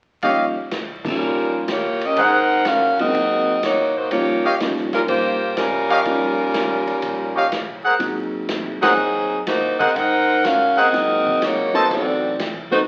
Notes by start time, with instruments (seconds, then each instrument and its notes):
0.22 upright bass D#2, upright piano F3 G3 A#3 C#4 D#4, trumpet section G4 C#5 D#5 F5, kick, ride
0.71 snare, hi-hat pedal, ride
1.04 upright piano F3 G3 A#3 C#4 D#4, kick, crash
1.09 saxophone section G3 C#4 F4 A#4
1.20 upright bass A#1
1.68 snare, hi-hat pedal, ride
1.72 saxophone section A#3 F4 G4 C#5
2.01 ride
2.06 saxophone section C#4 G4 A#4 D#5
2.16 upright bass G#1, trumpet section G#4 A#4 C5 F#5, kick, ride
2.21 saxophone section D#4 A#4 C5 F#5
2.65 upright bass A1, saxophone section C#4 F#4 A#4 F5, snare, hi-hat pedal, ride
2.99 upright piano F#3 G#3 A#3 C4 D#4, saxophone section C4 F#4 A#4 D#5, ride
3.14 upright bass D#2, kick, ride
3.63 saxophone section A#3 D#4 F#4 C#5, snare, hi-hat pedal, ride
3.96 upright bass A#2, saxophone section A#3 D#4 F#4 C5
4.11 upright bass D#2, upright piano F3 G3 A#3 C#4 D#4, saxophone section A#3 F4 G4 C#5, kick, ride
4.45 trumpet section G4 C#5 D#5 F5
4.60 upright piano F3 G3 A#3 C#4 D#4, snare, hi-hat pedal, ride
4.77 snare
4.93 saxophone section G3 C#4 F4 A#4, snare, ride
5.08 upright bass G2, saxophone section A#3 F4 G4 C5, kick, ride
5.57 saxophone section G3 C#4 F4 A#4, snare, hi-hat pedal, ride
5.90 trumpet section G4 C#5 D#5 F5, ride
6.05 upright bass D#2, upright piano F3 G3 A#3 C#4 D#4, kick, ride
6.54 snare, hi-hat pedal, ride
6.87 ride
7.02 upright bass A#1, kick, ride
7.36 trumpet section G4 C#5 D#5 F5
7.52 snare, hi-hat pedal, ride
7.84 trumpet section G#4 A#4 C5 F#5, muted upright bass stroke
7.99 upright bass G#1, upright piano F#3 G#3 A#3 C4 D#4, kick, ride
8.49 snare, hi-hat pedal, ride
8.82 saxophone section F#3 C4 D#4 G#4, trumpet section G#4 A#4 C5 F#5, snare, ride
8.96 upright bass D#2
9.47 saxophone section A#3 D#4 F#4 C5, snare, hi-hat pedal, ride
9.79 saxophone section C4 F#4 A#4 D#5, trumpet section G#4 A#4 C5 F#5, muted upright bass stroke, kick, ride
9.95 upright bass G#2, saxophone section D#4 A#4 C5 F#5, kick, ride
10.44 saxophone section C#4 F#4 A#4 F5, snare, hi-hat pedal, ride
10.77 saxophone section C4 F#4 A#4 D#5, trumpet section G#4 A#4 C5 F#5, ride
10.93 upright bass D#2, upright piano F#3 G#3 A#3 C4 D#4, kick, snare, ride
11.26 kick
11.42 saxophone section A#3 D#4 F#4 C#5, snare, hi-hat pedal, ride
11.73 upright piano F#3 A3 C4 D#4 B4, trumpet section A4 C5 D#5 A5, ride
11.77 saxophone section A#3 D#4 F#4 C5
11.90 upright bass A1, saxophone section C4 F#4 A4 D5, kick, ride
12.39 snare, hi-hat pedal, ride
12.71 upright piano F#3 A3 C4 D#4 B4, saxophone section A3 D#4 F#4 C5, ride